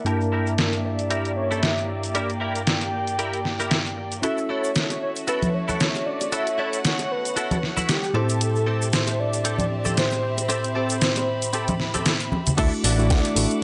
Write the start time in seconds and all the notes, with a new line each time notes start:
Already playing: A#4
0.05 G2 A#3 D4 E4 G4 A#4 D5 E5 A5, closed hi-hat, shaker
0.21 shaker
0.32 E4 G4 A#4
0.47 shaker
0.58 snare, closed hi-hat, shaker
0.72 muted clean electric guitar stroke, closed hi-hat, shaker
0.85 D5
0.99 closed hi-hat, shaker
1.10 E4 G4 A#4, closed hi-hat, shaker
1.25 closed hi-hat, shaker
1.36 C#5
1.51 E4 G4 A4, shaker
1.63 E5, snare, closed hi-hat, shaker
1.78 shaker
1.88 muted clean electric guitar stroke
2.03 closed hi-hat, shaker
2.15 E4 G4 A#4 D5 G5, closed hi-hat, shaker
2.30 closed hi-hat, shaker
2.40 E4 G4 A#4 G5
2.55 closed hi-hat, shaker
2.67 snare, closed hi-hat, shaker
2.81 muted clean electric guitar stroke, closed hi-hat, shaker
3.07 closed hi-hat, shaker
3.19 E4 G4 A#4, closed hi-hat, shaker
3.33 closed hi-hat, shaker
3.45 snare
3.60 E4 G4 A#4, shaker
3.71 snare, closed hi-hat, shaker
3.86 shaker
3.97 muted clean electric guitar stroke
4.12 closed hi-hat, shaker
4.22 A3 C#4 E4 F#4 A4 C#5 E5, closed hi-hat, cabasa, shaker
4.38 cabasa, shaker
4.49 E4 F#4 A4 C#5
4.64 cabasa, shaker
4.75 snare, closed hi-hat, cabasa, shaker
4.90 muted clean electric guitar stroke, closed hi-hat, high bongo, cabasa, shaker
5.02 C#5
5.16 closed hi-hat, cabasa, shaker
5.27 E4 F#4 A4 B4, closed hi-hat, cabasa, shaker
5.42 closed hi-hat, high conga, cabasa, shaker
5.54 C#5
5.68 E4 F#4 A4, high conga, cabasa, shaker
5.80 snare, closed hi-hat, cabasa, shaker
5.95 high bongo, cabasa, shaker
6.06 D5, muted clean electric guitar stroke
6.21 closed hi-hat, high bongo, cabasa, shaker
6.32 E4 F#4 A4 E5 F#5, closed hi-hat, cabasa, shaker
6.47 closed hi-hat, cabasa, shaker
6.58 E4 F#4 A4 C#5
6.73 closed hi-hat, cabasa, shaker
6.85 snare, closed hi-hat, cabasa, shaker
6.99 muted clean electric guitar stroke, closed hi-hat, high bongo, cabasa, shaker
7.12 B4
7.25 closed hi-hat, cabasa, shaker
7.36 E4 F#4 A4, closed hi-hat, cabasa, shaker
7.51 closed hi-hat, high bongo, high conga, cabasa, shaker
7.63 snare
7.77 E4 F#4 B4, high conga, cabasa, shaker
7.89 G4, snare, closed hi-hat, cabasa, shaker
8.03 cabasa, shaker
8.14 A2 C4 E4 G4 A4 C5 E5, high bongo
8.29 closed hi-hat, cabasa, shaker
8.41 closed hi-hat, cabasa, shaker
8.55 cabasa, shaker
8.66 C4 G4 A4
8.82 cabasa, shaker
8.92 C5, snare, closed hi-hat, cabasa, shaker
9.07 muted clean electric guitar stroke, closed hi-hat, high bongo, cabasa, shaker
9.20 D5
9.33 closed hi-hat, cabasa, shaker
9.44 C4 G4 A4, closed hi-hat, cabasa, shaker
9.59 closed hi-hat, high conga, cabasa, shaker
9.85 C4 G4 A4, high conga, cabasa, shaker
9.97 C5, snare, closed hi-hat, cabasa, shaker
10.11 high bongo, cabasa, shaker
10.23 B5, muted clean electric guitar stroke
10.38 closed hi-hat, high bongo, cabasa, shaker
10.49 C4 G4 A4 C5, closed hi-hat, cabasa, shaker
10.64 closed hi-hat, cabasa, shaker
10.75 C4 G4 A4
10.89 closed hi-hat, cabasa, shaker
11.01 snare, closed hi-hat, cabasa, shaker
11.16 muted clean electric guitar stroke, closed hi-hat, high bongo, cabasa, shaker
11.42 closed hi-hat, cabasa, shaker
11.53 C4 G4 A4, closed hi-hat, cabasa, shaker
11.68 closed hi-hat, high bongo, high conga, cabasa, shaker
11.80 snare
11.94 C4 G4 A4, closed hi-hat, high bongo, high conga, cabasa, shaker
12.06 snare, closed hi-hat, cabasa, shaker
12.20 closed hi-hat, cabasa, shaker
12.32 muted clean electric guitar stroke, high bongo, high conga
12.46 closed hi-hat, low conga, cabasa, shaker
12.57 D2 A3 D4 E4 F#4 A4 E5 F#5 D6, kick, closed hi-hat, crash, shaker
12.73 shaker
12.84 A1 D4 E4 F#4 A4 D5, open hi-hat, shaker
12.98 A3 D4 E4 F#4, shaker
13.09 D2 D5, kick, snare, closed hi-hat, shaker
13.25 closed hi-hat, shaker
13.35 A1 A3 D4 E4 F#4, open hi-hat, shaker
13.51 closed hi-hat, shaker